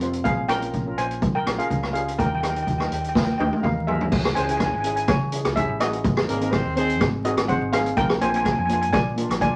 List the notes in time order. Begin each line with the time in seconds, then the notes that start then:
Already playing: F1
0.01 C4 F4 C5, closed hi-hat
0.13 closed hi-hat
0.24 A#1 G#4 F5, kick, closed hi-hat
0.49 C#4 F4 A#4 G5, cross-stick, closed hi-hat
0.62 C#4 F4 A#4, closed hi-hat
0.73 A#1, kick, closed hi-hat
0.86 C#4 F4 A#4
0.98 A#1 C5 G#5, closed hi-hat
1.11 closed hi-hat
1.22 kick, closed hi-hat
1.35 A#4 G5
1.46 A#1 C#4 F4 A#4, cross-stick, closed hi-hat
1.58 C#4 F4 G#4 A#4 F5, closed hi-hat
1.70 C#2, kick, closed hi-hat
1.83 cross-stick
1.93 C#4 F4 G4 G#4 F5, closed hi-hat
2.08 closed hi-hat
2.18 D#2 A#4 G5, kick, closed hi-hat
2.26 G5
2.35 G5
2.41 D#4 G4 A#4 G5, cross-stick, closed hi-hat
2.49 G5
2.55 D#4 G4 A#4 G5, closed hi-hat
2.63 G5
2.67 D#2 G5, kick, closed hi-hat
2.78 D#4 G4 A#4 G5, cross-stick
2.86 G5
2.91 D#2 G5, closed hi-hat
3.01 G5, closed hi-hat
3.09 G5
3.15 G5, kick, snare
3.24 G5
3.31 G5
3.38 D#2 D#4 G4 A#4 D#5 G5, high tom
3.46 G5
3.52 D#4 G4 A#4, high tom
3.63 D#2 A#4 F5, kick, mid tom
3.87 D#4 G4 G#4 A#4 E5, floor tom
4.01 floor tom
4.12 C#2, kick, crash
4.25 cross-stick
4.35 C#2 C#4 E4 G#4 C5 G#5, closed hi-hat
4.42 G#5
4.48 C#4 E4 G#4 G#5, closed hi-hat
4.57 G#5, kick, cross-stick, closed hi-hat
4.66 G#5
4.73 G#1 G#5
4.80 C#4 G#5, closed hi-hat
4.84 E4 G#4 G#5
4.96 G#5, closed hi-hat
5.08 C#3 C#5 G#5, kick, cross-stick, closed hi-hat
5.32 C#4 E4 G#4, closed hi-hat
5.45 C#2, cross-stick, closed hi-hat
5.56 C#4 E4 G4 G#4 E5, kick, closed hi-hat
5.69 A1
5.80 C#4 E4 F#4 G#4 D#5, cross-stick, closed hi-hat
5.93 closed hi-hat
6.04 G#1, kick, closed hi-hat
6.17 cross-stick
6.28 G#1 A#3 C4 D#4 G#4 A#4, closed hi-hat
6.40 C4 D#4 A#4, closed hi-hat
6.52 C4 C5, kick, cross-stick, closed hi-hat
6.65 D#2
6.76 C4 D#4 G#4 C5, closed hi-hat
6.89 closed hi-hat
7.01 G#2, kick, cross-stick, closed hi-hat
7.24 C4 D#4 F#4 G#4 D#5, closed hi-hat
7.37 G#1, cross-stick, closed hi-hat
7.48 C4 D#4 G#4 C5 F#5, kick, closed hi-hat
7.61 G#1
7.72 C4 D#4 G#4 F5, cross-stick, closed hi-hat
7.86 closed hi-hat
7.97 A#1 A#4 G5, kick, closed hi-hat
8.10 cross-stick
8.21 A#1 A#3 D4 F4 C5 G#5, closed hi-hat
8.29 A#3 G#5
8.34 D4 F4 G#5, closed hi-hat
8.43 G#5, kick, cross-stick, closed hi-hat
8.52 G#5
8.58 F2 G#5
8.65 A#3 D4 G#5, closed hi-hat
8.70 F4 G#5
8.81 G#5, closed hi-hat
8.93 A#2 D5 G#5, kick, cross-stick, closed hi-hat
9.16 A#3 D4 F4, closed hi-hat
9.29 A#1, cross-stick, closed hi-hat
9.40 A#3 D4 F4 D5 G#5, kick, closed hi-hat